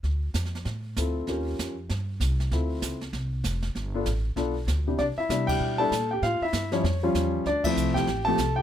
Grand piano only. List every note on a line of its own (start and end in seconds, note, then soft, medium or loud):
0.97 1.28 C4 soft
0.97 1.28 E4 soft
0.97 1.27 F4 soft
0.97 1.28 A4 soft
1.29 1.74 C#4 soft
1.29 1.74 F4 soft
1.29 1.74 G4 soft
1.29 1.74 A#4 soft
2.52 2.98 C4 soft
2.52 2.98 E4 soft
2.52 2.98 F4 soft
2.52 2.98 A4 soft
3.95 4.05 B3 medium
3.95 4.05 D4 medium
3.95 4.06 F4 medium
3.95 4.06 A4 medium
4.36 4.53 B3 medium
4.36 4.54 D4 medium
4.36 4.54 F4 medium
4.36 4.54 A4 medium
4.87 4.98 C3 soft
4.87 4.98 B3 soft
4.87 4.98 D4 soft
4.87 4.98 E4 soft
4.87 4.98 G4 soft
4.99 5.06 D4 medium
4.99 5.04 D5 medium
5.18 5.29 E4 medium
5.18 5.46 E5 medium
5.30 5.76 G3 medium
5.30 5.76 B3 medium
5.30 5.76 D4 medium
5.30 5.76 E4 medium
5.47 5.78 G4 medium
5.47 5.80 G5 medium
5.78 5.90 G3 medium
5.78 5.91 B3 medium
5.78 5.90 D4 medium
5.78 5.91 E4 medium
5.78 6.09 A4 medium
5.78 6.11 A5 loud
6.11 6.23 G4 medium
6.11 6.23 G5 medium
6.23 6.41 F4 medium
6.23 6.42 F5 medium
6.42 6.71 E4 medium
6.42 6.73 E5 medium
6.72 6.83 F3 medium
6.72 6.83 G3 medium
6.72 6.83 C#4 medium
6.72 6.83 E4 medium
6.72 7.30 C#5 medium
7.03 7.44 F3 medium
7.03 7.44 G3 medium
7.03 7.44 C#4 medium
7.03 7.44 F4 medium
7.47 7.64 D4 medium
7.47 7.65 D5 medium
7.64 8.06 F3 medium
7.64 8.06 A3 medium
7.64 8.06 C4 medium
7.64 8.06 E4 medium
7.64 7.96 E5 medium
7.94 8.24 G4 medium
7.94 8.26 G5 medium
8.25 8.38 F3 medium
8.25 8.38 A3 medium
8.25 8.38 C4 medium
8.25 8.38 G4 medium
8.25 8.55 A4 medium
8.25 8.57 A5 loud
8.56 8.62 G4 medium
8.56 8.62 G5 medium